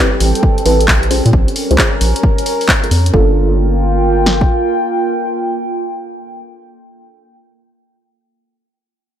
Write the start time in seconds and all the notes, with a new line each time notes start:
Already playing: G3 C4 G4 A4 G5
0.20 A1, open hi-hat
0.35 closed hi-hat
0.43 kick
0.58 closed hi-hat
0.66 A1 C4 E4 G4 B4, open hi-hat
0.81 closed hi-hat
0.88 A#1, kick, clap
1.03 closed hi-hat
1.11 C#4 F4 G#4 C5, open hi-hat
1.26 A#2, closed hi-hat
1.31 A#1 A#4, kick
1.48 closed hi-hat
1.56 open hi-hat
1.71 C#2 C#4 F4 G#4 C5, closed hi-hat
1.78 F4 G#4, kick, clap
2.01 A#1, open hi-hat
2.16 closed hi-hat
2.23 kick
2.38 closed hi-hat
2.46 open hi-hat
2.61 open hi-hat
2.69 kick, clap
2.83 C#4 F4 G#4 A#4, closed hi-hat
2.91 F2, open hi-hat
3.06 closed hi-hat
3.14 G1 A#3 D4 F4 A4, kick
3.23 A#3
3.30 G5
4.26 snare
4.41 kick